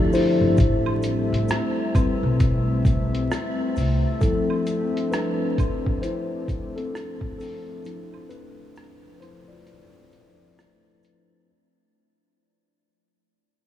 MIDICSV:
0, 0, Header, 1, 5, 480
1, 0, Start_track
1, 0, Tempo, 909091
1, 304, Time_signature, 4, 2, 24, 8
1, 7217, End_track
2, 0, Start_track
2, 0, Title_t, "Tine electric piano"
2, 0, Program_c, 0, 4
2, 0, Control_c, 0, 64, 127
2, 0, Note_on_c, 0, 53, 50
2, 0, Note_on_c, 0, 60, 41
2, 0, Note_on_c, 0, 64, 54
2, 0, Note_on_c, 0, 67, 85
2, 0, Note_on_c, 0, 69, 77
2, 0, Note_on_c, 0, 76, 106
2, 72, Note_on_c, 0, 72, 75
2, 76, Note_off_c, 0, 64, 0
2, 76, Note_on_c, 0, 64, 63
2, 81, Note_off_c, 0, 76, 0
2, 311, Note_off_c, 0, 53, 0
2, 311, Control_c, 0, 64, 0
2, 312, Note_off_c, 0, 60, 0
2, 312, Note_off_c, 0, 67, 0
2, 313, Note_off_c, 0, 69, 0
2, 398, Control_c, 0, 64, 127
2, 1028, Note_on_c, 0, 55, 56
2, 1031, Note_on_c, 0, 71, 51
2, 1034, Note_on_c, 0, 60, 63
2, 1487, Note_off_c, 0, 72, 0
2, 1489, Note_off_c, 0, 64, 0
2, 1725, Note_off_c, 0, 55, 0
2, 1727, Note_off_c, 0, 71, 0
2, 1728, Note_off_c, 0, 60, 0
2, 2222, Note_on_c, 0, 69, 83
2, 2225, Note_on_c, 0, 53, 57
2, 2230, Control_c, 0, 64, 0
2, 2230, Note_on_c, 0, 60, 65
2, 2233, Note_on_c, 0, 64, 58
2, 2312, Control_c, 0, 64, 127
2, 2688, Note_off_c, 0, 60, 0
2, 2701, Note_on_c, 0, 71, 82
2, 2712, Note_on_c, 0, 62, 66
2, 2718, Note_off_c, 0, 69, 0
2, 2924, Note_off_c, 0, 53, 0
2, 2928, Note_off_c, 0, 64, 0
2, 3167, Note_off_c, 0, 62, 0
2, 3178, Note_on_c, 0, 72, 87
2, 3190, Note_on_c, 0, 64, 67
2, 3197, Note_off_c, 0, 71, 0
2, 3556, Note_off_c, 0, 64, 0
2, 3569, Note_on_c, 0, 69, 90
2, 3581, Note_on_c, 0, 60, 72
2, 3583, Note_off_c, 0, 72, 0
2, 3886, Note_off_c, 0, 60, 0
2, 3892, Note_off_c, 0, 69, 0
2, 3898, Note_on_c, 0, 69, 90
2, 3909, Note_on_c, 0, 60, 73
2, 4141, Note_off_c, 0, 60, 0
2, 4143, Note_on_c, 0, 53, 52
2, 4147, Note_on_c, 0, 60, 47
2, 4150, Note_on_c, 0, 64, 61
2, 4360, Note_off_c, 0, 69, 0
2, 4379, Note_on_c, 0, 71, 105
2, 4390, Note_on_c, 0, 62, 79
2, 4823, Note_off_c, 0, 62, 0
2, 4830, Note_off_c, 0, 71, 0
2, 4836, Note_on_c, 0, 71, 70
2, 4857, Note_off_c, 0, 53, 0
2, 4859, Note_off_c, 0, 60, 0
2, 4859, Note_on_c, 0, 72, 99
2, 4860, Note_off_c, 0, 64, 0
2, 4861, Note_off_c, 0, 71, 0
2, 4864, Note_on_c, 0, 53, 50
2, 4865, Note_on_c, 0, 60, 48
2, 4866, Note_on_c, 0, 64, 75
2, 5006, Note_off_c, 0, 64, 0
2, 5006, Note_on_c, 0, 74, 99
2, 5015, Note_on_c, 0, 65, 80
2, 5016, Note_off_c, 0, 72, 0
2, 5083, Note_off_c, 0, 53, 0
2, 5084, Note_off_c, 0, 60, 0
2, 5799, Note_off_c, 0, 74, 0
2, 5804, Note_off_c, 0, 65, 0
2, 6072, Control_c, 0, 64, 0
2, 7217, End_track
3, 0, Start_track
3, 0, Title_t, "Ambient pad"
3, 0, Program_c, 1, 92
3, 0, Note_on_c, 1, 50, 80
3, 0, Note_on_c, 1, 53, 70
3, 0, Note_on_c, 1, 57, 72
3, 0, Note_on_c, 1, 62, 70
3, 0, Note_on_c, 1, 76, 88
3, 285, Note_off_c, 1, 53, 0
3, 286, Note_off_c, 1, 50, 0
3, 297, Note_off_c, 1, 62, 0
3, 307, Note_on_c, 1, 60, 78
3, 308, Note_on_c, 1, 55, 72
3, 2207, Note_off_c, 1, 55, 0
3, 2227, Note_on_c, 1, 53, 75
3, 2228, Note_on_c, 1, 62, 75
3, 6043, Note_off_c, 1, 57, 0
3, 6044, Note_off_c, 1, 53, 0
3, 6044, Note_off_c, 1, 76, 0
3, 6045, Note_off_c, 1, 60, 0
3, 6045, Note_off_c, 1, 62, 0
3, 7217, End_track
4, 0, Start_track
4, 0, Title_t, "Upright bass"
4, 0, Program_c, 2, 32
4, 216, Note_on_c, 2, 31, 85
4, 298, Note_off_c, 2, 31, 0
4, 308, Note_on_c, 2, 33, 96
4, 675, Note_off_c, 2, 33, 0
4, 698, Note_on_c, 2, 33, 80
4, 779, Note_off_c, 2, 33, 0
4, 1177, Note_on_c, 2, 35, 85
4, 1725, Note_off_c, 2, 35, 0
4, 1988, Note_on_c, 2, 36, 79
4, 2124, Note_off_c, 2, 36, 0
4, 7217, End_track
5, 0, Start_track
5, 0, Title_t, "Drums"
5, 66, Note_on_c, 9, 82, 43
5, 78, Note_on_c, 9, 46, 48
5, 119, Note_off_c, 9, 82, 0
5, 131, Note_off_c, 9, 46, 0
5, 303, Note_on_c, 9, 82, 63
5, 307, Note_on_c, 9, 36, 99
5, 317, Note_on_c, 9, 42, 78
5, 356, Note_off_c, 9, 82, 0
5, 360, Note_off_c, 9, 36, 0
5, 369, Note_off_c, 9, 42, 0
5, 455, Note_on_c, 9, 76, 66
5, 508, Note_off_c, 9, 76, 0
5, 542, Note_on_c, 9, 82, 47
5, 548, Note_on_c, 9, 42, 59
5, 595, Note_off_c, 9, 82, 0
5, 601, Note_off_c, 9, 42, 0
5, 708, Note_on_c, 9, 42, 52
5, 760, Note_off_c, 9, 42, 0
5, 784, Note_on_c, 9, 82, 73
5, 796, Note_on_c, 9, 37, 117
5, 797, Note_on_c, 9, 42, 91
5, 837, Note_off_c, 9, 82, 0
5, 849, Note_off_c, 9, 37, 0
5, 849, Note_off_c, 9, 42, 0
5, 1029, Note_on_c, 9, 36, 97
5, 1030, Note_on_c, 9, 76, 68
5, 1030, Note_on_c, 9, 82, 53
5, 1032, Note_on_c, 9, 42, 57
5, 1081, Note_off_c, 9, 36, 0
5, 1083, Note_off_c, 9, 76, 0
5, 1083, Note_off_c, 9, 82, 0
5, 1085, Note_off_c, 9, 42, 0
5, 1266, Note_on_c, 9, 82, 65
5, 1268, Note_on_c, 9, 42, 88
5, 1269, Note_on_c, 9, 36, 78
5, 1319, Note_off_c, 9, 82, 0
5, 1321, Note_off_c, 9, 42, 0
5, 1322, Note_off_c, 9, 36, 0
5, 1505, Note_on_c, 9, 36, 98
5, 1505, Note_on_c, 9, 82, 51
5, 1512, Note_on_c, 9, 42, 60
5, 1557, Note_off_c, 9, 36, 0
5, 1558, Note_off_c, 9, 82, 0
5, 1565, Note_off_c, 9, 42, 0
5, 1661, Note_on_c, 9, 42, 53
5, 1714, Note_off_c, 9, 42, 0
5, 1750, Note_on_c, 9, 82, 78
5, 1751, Note_on_c, 9, 37, 117
5, 1759, Note_on_c, 9, 42, 84
5, 1803, Note_off_c, 9, 37, 0
5, 1803, Note_off_c, 9, 82, 0
5, 1811, Note_off_c, 9, 42, 0
5, 1987, Note_on_c, 9, 82, 45
5, 1994, Note_on_c, 9, 46, 49
5, 2040, Note_off_c, 9, 82, 0
5, 2047, Note_off_c, 9, 46, 0
5, 2224, Note_on_c, 9, 82, 65
5, 2225, Note_on_c, 9, 36, 99
5, 2233, Note_on_c, 9, 42, 82
5, 2277, Note_off_c, 9, 82, 0
5, 2278, Note_off_c, 9, 36, 0
5, 2286, Note_off_c, 9, 42, 0
5, 2376, Note_on_c, 9, 76, 63
5, 2429, Note_off_c, 9, 76, 0
5, 2463, Note_on_c, 9, 82, 47
5, 2464, Note_on_c, 9, 42, 55
5, 2516, Note_off_c, 9, 82, 0
5, 2517, Note_off_c, 9, 42, 0
5, 2624, Note_on_c, 9, 42, 56
5, 2677, Note_off_c, 9, 42, 0
5, 2707, Note_on_c, 9, 82, 70
5, 2711, Note_on_c, 9, 37, 115
5, 2712, Note_on_c, 9, 42, 92
5, 2759, Note_off_c, 9, 82, 0
5, 2764, Note_off_c, 9, 37, 0
5, 2765, Note_off_c, 9, 42, 0
5, 2947, Note_on_c, 9, 36, 101
5, 2948, Note_on_c, 9, 42, 60
5, 2953, Note_on_c, 9, 76, 69
5, 2953, Note_on_c, 9, 82, 51
5, 3000, Note_off_c, 9, 36, 0
5, 3000, Note_off_c, 9, 42, 0
5, 3006, Note_off_c, 9, 76, 0
5, 3006, Note_off_c, 9, 82, 0
5, 3097, Note_on_c, 9, 36, 99
5, 3149, Note_off_c, 9, 36, 0
5, 3184, Note_on_c, 9, 42, 88
5, 3186, Note_on_c, 9, 82, 64
5, 3237, Note_off_c, 9, 42, 0
5, 3239, Note_off_c, 9, 82, 0
5, 3423, Note_on_c, 9, 36, 95
5, 3425, Note_on_c, 9, 82, 49
5, 3429, Note_on_c, 9, 42, 61
5, 3476, Note_off_c, 9, 36, 0
5, 3478, Note_off_c, 9, 82, 0
5, 3481, Note_off_c, 9, 42, 0
5, 3578, Note_on_c, 9, 42, 49
5, 3631, Note_off_c, 9, 42, 0
5, 3671, Note_on_c, 9, 37, 118
5, 3672, Note_on_c, 9, 82, 76
5, 3679, Note_on_c, 9, 42, 95
5, 3724, Note_off_c, 9, 37, 0
5, 3725, Note_off_c, 9, 82, 0
5, 3732, Note_off_c, 9, 42, 0
5, 3808, Note_on_c, 9, 36, 92
5, 3860, Note_off_c, 9, 36, 0
5, 3907, Note_on_c, 9, 82, 47
5, 3912, Note_on_c, 9, 46, 51
5, 3960, Note_off_c, 9, 82, 0
5, 3965, Note_off_c, 9, 46, 0
5, 4143, Note_on_c, 9, 82, 68
5, 4152, Note_on_c, 9, 42, 80
5, 4196, Note_off_c, 9, 82, 0
5, 4205, Note_off_c, 9, 42, 0
5, 4297, Note_on_c, 9, 76, 62
5, 4349, Note_off_c, 9, 76, 0
5, 4382, Note_on_c, 9, 82, 47
5, 4386, Note_on_c, 9, 42, 57
5, 4435, Note_off_c, 9, 82, 0
5, 4438, Note_off_c, 9, 42, 0
5, 4624, Note_on_c, 9, 82, 71
5, 4633, Note_on_c, 9, 37, 108
5, 4634, Note_on_c, 9, 42, 89
5, 4677, Note_off_c, 9, 82, 0
5, 4686, Note_off_c, 9, 37, 0
5, 4686, Note_off_c, 9, 42, 0
5, 4869, Note_on_c, 9, 42, 60
5, 4869, Note_on_c, 9, 76, 73
5, 4869, Note_on_c, 9, 82, 52
5, 4922, Note_off_c, 9, 42, 0
5, 4922, Note_off_c, 9, 76, 0
5, 4922, Note_off_c, 9, 82, 0
5, 5104, Note_on_c, 9, 42, 92
5, 5104, Note_on_c, 9, 82, 67
5, 5157, Note_off_c, 9, 42, 0
5, 5157, Note_off_c, 9, 82, 0
5, 5341, Note_on_c, 9, 82, 51
5, 5348, Note_on_c, 9, 42, 62
5, 5394, Note_off_c, 9, 82, 0
5, 5401, Note_off_c, 9, 42, 0
5, 5588, Note_on_c, 9, 82, 77
5, 5591, Note_on_c, 9, 37, 116
5, 5599, Note_on_c, 9, 42, 92
5, 5641, Note_off_c, 9, 82, 0
5, 5643, Note_off_c, 9, 37, 0
5, 5652, Note_off_c, 9, 42, 0
5, 5824, Note_on_c, 9, 82, 46
5, 5832, Note_on_c, 9, 42, 63
5, 5877, Note_off_c, 9, 82, 0
5, 5885, Note_off_c, 9, 42, 0
5, 7217, End_track
0, 0, End_of_file